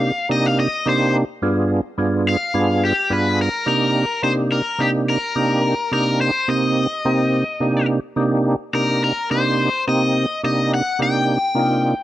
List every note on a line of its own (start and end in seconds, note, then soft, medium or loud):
0.00 0.12 C3 medium
0.00 0.12 A#3 medium
0.00 0.12 D4 medium
0.00 0.12 D#4 medium
0.00 0.12 G4 medium
0.00 0.28 F5 medium
0.29 0.68 C3 medium
0.29 0.68 A#3 medium
0.29 0.68 D4 medium
0.29 0.68 D#4 medium
0.29 0.68 G4 medium
0.29 0.46 D#5 medium
0.46 0.58 F5 loud
0.60 0.86 D#5 loud
0.86 1.24 C3 medium
0.86 1.25 A#3 medium
0.86 1.25 D4 medium
0.86 1.25 D#4 medium
0.86 1.25 G4 medium
0.86 1.14 C5 medium
1.42 1.81 G2 loud
1.42 1.81 B3 medium
1.42 1.81 D4 medium
1.42 1.81 F4 medium
1.42 1.81 G#4 loud
1.98 2.37 G2 medium
1.98 2.37 B3 medium
1.98 2.37 D4 medium
1.98 2.37 F4 medium
1.98 2.37 G#4 medium
2.29 2.82 F5 medium
2.54 2.93 G2 medium
2.54 2.93 B3 medium
2.54 2.93 D4 medium
2.54 2.93 F4 medium
2.54 2.93 G#4 medium
2.85 3.11 G4 medium
3.10 3.49 G2 medium
3.10 3.49 B3 medium
3.10 3.49 D4 medium
3.10 3.49 F4 medium
3.10 3.50 G#4 medium
3.10 3.39 B4 medium
3.42 3.67 A#4 loud
3.66 4.05 C3 medium
3.66 4.05 A#3 medium
3.66 4.05 D4 medium
3.66 4.06 D#4 medium
3.66 4.06 G4 medium
3.66 4.23 A#4 medium
4.23 4.62 C3 medium
4.23 4.62 A#3 medium
4.23 4.62 D4 medium
4.23 4.62 D#4 medium
4.23 4.62 G4 medium
4.23 4.31 C5 medium
4.52 4.81 A#4 medium
4.78 5.18 C3 medium
4.78 5.18 A#3 medium
4.78 5.18 D4 medium
4.78 5.18 D#4 medium
4.78 5.19 G4 medium
4.78 4.89 G4 medium
5.10 5.92 A#4 medium
5.35 5.75 C3 medium
5.35 5.75 A#3 medium
5.35 5.75 D4 medium
5.35 5.75 D#4 medium
5.35 5.75 G4 medium
5.91 6.31 C3 medium
5.91 6.31 A#3 medium
5.91 6.31 D4 medium
5.91 6.31 D#4 medium
5.91 6.31 G4 medium
5.91 6.21 A#4 medium
6.21 6.50 C5 medium
6.48 6.87 C3 medium
6.48 6.87 A#3 medium
6.48 6.87 C4 medium
6.48 6.87 D#4 medium
6.48 6.87 G4 medium
6.48 7.86 D#5 loud
7.05 7.44 C3 medium
7.05 7.44 A#3 medium
7.05 7.44 C4 medium
7.05 7.44 D#4 medium
7.05 7.44 G4 medium
7.60 8.00 C3 medium
7.60 8.00 A#3 medium
7.60 8.00 D4 medium
7.60 8.00 D#4 medium
7.60 8.00 G4 medium
8.16 8.56 C3 medium
8.16 8.56 A#3 medium
8.16 8.56 D4 medium
8.16 8.56 D#4 medium
8.16 8.56 G4 loud
8.73 9.13 C3 medium
8.73 9.13 A#3 medium
8.73 9.13 D4 medium
8.73 9.13 D#4 medium
8.73 9.13 G4 medium
8.73 9.03 A#4 medium
9.04 9.29 A#4 medium
9.30 9.69 C3 medium
9.30 9.69 A#3 medium
9.30 9.69 D4 medium
9.30 9.70 D#4 medium
9.30 9.70 G4 medium
9.30 9.83 C5 medium
9.87 10.26 C3 medium
9.87 10.26 A#3 medium
9.87 10.26 C4 medium
9.87 10.26 D#4 medium
9.87 10.26 G4 medium
9.87 10.40 D#5 medium
10.43 10.82 C3 medium
10.43 10.82 A#3 medium
10.43 10.82 D4 medium
10.43 10.82 D#4 medium
10.43 10.83 G4 medium
10.43 10.70 D#5 medium
10.74 10.99 F#5 medium
10.99 11.38 C3 medium
10.99 11.38 A#3 medium
10.99 11.38 D4 medium
10.99 11.38 D#4 medium
10.99 11.38 G4 medium
10.99 12.03 G5 loud
11.55 11.94 C3 medium
11.55 11.94 A#3 medium
11.55 11.94 D4 medium
11.55 11.95 D#4 medium
11.55 11.95 F4 medium